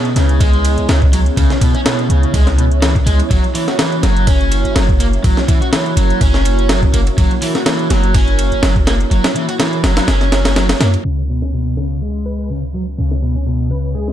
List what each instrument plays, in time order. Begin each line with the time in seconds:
Already playing: overdriven electric guitar B2, analog synth pad B3 C#4 E4 G#4 C#5
0.05 closed hi-hat
0.16 808-style bass C#2, overdriven electric guitar C#3, snare, closed hi-hat, ride
0.29 closed hi-hat
0.40 overdriven electric guitar G#3, kick, closed hi-hat, ride
0.53 closed hi-hat
0.65 closed hi-hat, ride
0.78 808-style bass C#2, closed hi-hat
0.89 808-style bass C#2, overdriven electric guitar C#3, snare, closed hi-hat, ride
1.02 kick, closed hi-hat
1.13 overdriven electric guitar F#3, closed hi-hat, ride
1.26 closed hi-hat
1.37 808-style bass C#2, overdriven electric guitar C#3, kick, closed hi-hat, ride
1.50 snare, closed hi-hat
1.61 overdriven electric guitar B2, kick, closed hi-hat, ride
1.75 overdriven electric guitar C#4, closed hi-hat
1.85 overdriven electric guitar B2, snare, closed hi-hat, ride
1.99 closed hi-hat
2.10 808-style bass C#2, overdriven electric guitar C#3, closed hi-hat
2.23 closed hi-hat
2.34 808-style bass C#2, overdriven electric guitar G#3, kick, closed hi-hat, ride
2.47 snare, closed hi-hat
2.58 overdriven electric guitar B2, closed hi-hat
2.71 closed hi-hat
2.82 overdriven electric guitar E3, snare, closed hi-hat, ride
2.95 kick, closed hi-hat
3.06 808-style bass C#2, overdriven electric guitar G#3, closed hi-hat, ride
3.20 closed hi-hat, ride
3.30 808-style bass F#1, overdriven electric guitar F#3, analog synth pad A#3 F#4, kick, closed hi-hat, ride
3.44 closed hi-hat
3.55 overdriven electric guitar E3, closed hi-hat, open hi-hat
3.68 overdriven electric guitar F#4, snare, closed hi-hat
3.79 overdriven electric guitar E3, snare, closed hi-hat, ride
3.92 closed hi-hat
4.03 808-style bass F#1, overdriven electric guitar F#3, snare, closed hi-hat, ride
4.17 closed hi-hat
4.27 overdriven electric guitar C#4, kick, closed hi-hat, ride
4.41 closed hi-hat
4.52 closed hi-hat, ride
4.65 808-style bass F#1, closed hi-hat
4.76 808-style bass F#1, overdriven electric guitar F#3, snare, closed hi-hat, ride
4.89 kick, closed hi-hat
5.00 overdriven electric guitar A#3, closed hi-hat, ride
5.13 closed hi-hat
5.24 808-style bass F#1, overdriven electric guitar F#3, kick, closed hi-hat, ride
5.37 snare, closed hi-hat
5.48 overdriven electric guitar E3, kick, closed hi-hat, ride
5.61 overdriven electric guitar F#4, closed hi-hat
5.73 overdriven electric guitar E3, snare, closed hi-hat, ride
5.86 closed hi-hat
5.97 808-style bass F#1, overdriven electric guitar F#3, closed hi-hat, ride
6.10 closed hi-hat
6.21 808-style bass F#1, overdriven electric guitar C#4, kick, closed hi-hat, ride
6.34 snare, closed hi-hat
6.45 closed hi-hat, ride
6.59 closed hi-hat
6.69 overdriven electric guitar F#3, snare, closed hi-hat, ride
6.83 kick, closed hi-hat
6.94 808-style bass F#1, overdriven electric guitar A#3, closed hi-hat, ride
7.07 closed hi-hat, ride
7.18 808-style bass F#1, overdriven electric guitar F#3, kick, closed hi-hat, ride
7.31 closed hi-hat
7.42 overdriven electric guitar E3, closed hi-hat, open hi-hat
7.55 overdriven electric guitar F#4, snare, closed hi-hat
7.66 overdriven electric guitar E3, snare, closed hi-hat, ride
7.79 closed hi-hat
7.90 808-style bass F#1, overdriven electric guitar F#3, snare, closed hi-hat, ride
8.04 closed hi-hat
8.14 overdriven electric guitar C#4, kick, closed hi-hat, ride
8.28 closed hi-hat
8.39 closed hi-hat, ride
8.52 808-style bass F#1, closed hi-hat
8.63 808-style bass F#1, overdriven electric guitar F#3, snare, closed hi-hat, ride
8.76 kick, closed hi-hat
8.87 overdriven electric guitar A#3, snare, closed hi-hat, ride
9.01 closed hi-hat
9.11 808-style bass F#1, overdriven electric guitar F#3, closed hi-hat, ride
9.24 snare, closed hi-hat, ride
9.36 overdriven electric guitar E3, closed hi-hat
9.49 overdriven electric guitar F#4, closed hi-hat, ride
9.60 overdriven electric guitar E3, snare, closed hi-hat, ride
9.73 closed hi-hat
9.84 808-style bass F#1, overdriven electric guitar F#3, snare, closed hi-hat, ride
9.97 snare, closed hi-hat, ride
10.08 808-style bass F#1, overdriven electric guitar C#4, snare, closed hi-hat, ride
10.21 snare, closed hi-hat
10.32 snare, closed hi-hat, ride
10.45 snare, closed hi-hat, ride
10.56 overdriven electric guitar F#3, snare, closed hi-hat, ride
10.69 snare, closed hi-hat, ride
10.80 808-style bass F#2, overdriven electric guitar A#3, snare, closed hi-hat, ride
10.94 closed hi-hat, ride
11.05 808-style bass C#2, overdriven electric guitar C#3, analog synth pad B3 C#4 E4 G#4 C#5, ride
11.29 overdriven electric guitar B2, open hi-hat
11.42 overdriven electric guitar C#4, snare
11.53 overdriven electric guitar B2, ride
11.77 overdriven electric guitar C#3, snare, ride
12.02 overdriven electric guitar G#3, ride
12.26 digital synth lead B4, ride
12.39 digital synth lead B4
12.50 overdriven electric guitar C#3, ride
12.74 overdriven electric guitar F#3, ride
12.98 808-style bass C#2, overdriven electric guitar C#3, ride
13.11 snare
13.22 overdriven electric guitar B2, ride
13.35 overdriven electric guitar C#4
13.46 overdriven electric guitar B2, ride
13.71 overdriven electric guitar C#3, digital synth lead B4, ride
13.95 overdriven electric guitar G#3, digital synth lead G#4, ride
14.08 snare